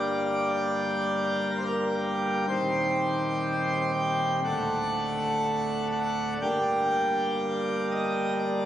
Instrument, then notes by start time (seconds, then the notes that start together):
pipe organ
Already playing: G1 G2 G3 A#3 G4 D5
0.52 D5
1.51 A#4
1.57 C5
1.64 A#4
2.48 D#1 D#2 G3 C4 G4 C5
3.94 G5
4.44 D1 D2 A3 D4 F#5
5.92 F#5
6.41 G1 G2 G3 A#3 D4 G5
7.91 D#5
8.39 D5